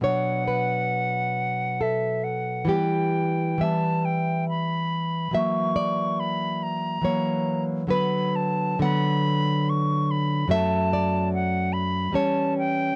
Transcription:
<<
  \new Staff \with { instrumentName = "Flute" } { \time 3/4 \key b \minor \tempo 4 = 70 fis''2 e''8 fis''8 | g''4 a''8 g''8 b''4 | cis'''4 b''8 ais''4 r8 | b''8 a''8 b''4 cis'''8 b''8 |
\key d \major a''4 fis''8 b''8 a''8 g''8 | }
  \new Staff \with { instrumentName = "Nylon-string guitar" } { \time 3/4 \key b \minor << { cis''8 b'4. a'4 | g'4 e''2 | e''8 d''4. cis''4 | b'4 fis''2 |
\key d \major e''8 d''4. cis''4 | } \\ { <b, fis d'>2. | <e g b>4 <e g b>2 | <e fis ais>2 <e fis ais>4 | <d fis b>4 <d fis b>2 |
<fis, fis a>2 <e g cis'>4 | } >> }
>>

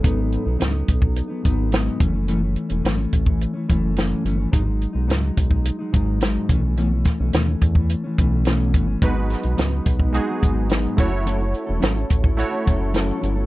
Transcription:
<<
  \new Staff \with { instrumentName = "Synth keys" } { \time 4/4 \key gis \phrygian \tempo 4 = 107 r1 | r1 | r1 | r1 |
<gis dis' fis' b'>4. r8 <gis dis' fis' gis'>4. <a e' fis' cis''>8~ | <a e' fis' cis''>4 r4 <a e' fis' cis''>4. r8 | }
  \new Staff \with { instrumentName = "Clean electric guitar" } { \time 4/4 \key gis \phrygian <gis, fis b dis'>8. <fis b dis'>16 <gis, fis b dis'>16 <fis b dis'>8 <fis b dis'>8 <fis b dis'>16 <gis, fis b dis'>8 <gis, fis b dis'>8 <fis, e a cis'>16 <e a cis'>16 | <fis, e a cis'>16 <e a cis'>8 <e a cis'>16 <fis, e a cis'>16 <e a cis'>8 <e a cis'>8 <e a cis'>16 <fis, e a cis'>8 <fis, e a cis'>8 <fis, e a cis'>16 <e a cis'>16 | <gis, fis gis dis'>16 <fis gis dis'>8 <fis gis dis'>16 <gis, fis gis dis'>16 <fis gis dis'>8 <fis gis dis'>8 <fis gis dis'>16 <gis, fis gis dis'>8 <gis, fis gis dis'>8 <b, e a cis'>16 <e a cis'>16 | <b, e a cis'>16 <e a cis'>8 <e a cis'>16 <b, e a cis'>16 <e a cis'>8 <e a cis'>8 <e a cis'>16 <b, e a cis'>8 <b, e a cis'>8 <b, e a cis'>16 <e a cis'>16 |
<gis, fis b dis'>16 <fis b dis'>8 <fis b dis'>16 <gis, fis b dis'>16 <fis b dis'>8 <fis b dis'>8 <fis b dis'>16 <gis, fis b dis'>8 <gis, fis b dis'>8 <fis cis' e' a'>16 <cis' e' a'>16 | <fis cis' e' a'>16 <cis' e' a'>8 <cis' e' a'>16 <fis cis' e' a'>16 <cis' e' a'>8 <cis' e' a'>8 <cis' e' a'>16 <fis cis' e' a'>8 <fis cis' e' a'>8 <fis cis' e' a'>16 <cis' e' a'>16 | }
  \new Staff \with { instrumentName = "Analog synth bass" } { \clef bass \time 4/4 \key gis \phrygian gis,,8. b,,16 cis,8 b,,8. r16 gis,,4 fis,,8~ | fis,,8. e,,16 gis,,8 a,,8. r16 fis,,4 g,,8 | gis,,8. b,,16 cis,8 b,,8. r16 gis,,4 b,,8~ | b,,8. b,,16 dis,8 e,8. r16 b,,4 g,,8 |
gis,,8. b,,16 cis,8 b,,8. r16 gis,,4 fis,,8~ | fis,,8. e,,16 gis,,8 a,,8. r16 fis,,4 g,,8 | }
  \new DrumStaff \with { instrumentName = "Drums" } \drummode { \time 4/4 <hh bd>8 hh8 <hh sn>8 <hh bd>16 bd16 hh8 <hh bd>8 <hh sn>8 <hh bd>8 | hh8 hh16 hh16 <hh sn>8 <hh bd>16 bd16 hh8 <hh bd>8 <hh sn>8 hh8 | <hh bd>8 hh8 <hh sn>8 <hh bd>16 bd16 hh8 <hh bd>8 <hh sn>8 <hh bd>8 | hh8 <hh bd sn>8 <hh sn>8 <hh bd>16 bd16 hh8 <hh bd>8 <hh sn>8 <hh bd>8 |
<hh bd>8 <hh sn>16 hh16 <hh sn>8 <hh bd>16 bd16 hh8 <hh bd>8 <hh sn>8 <hh bd>8 | hh8 hh8 <hh sn>8 <hh bd>16 bd16 hh8 <hh bd>8 <hh sn>8 hh8 | }
>>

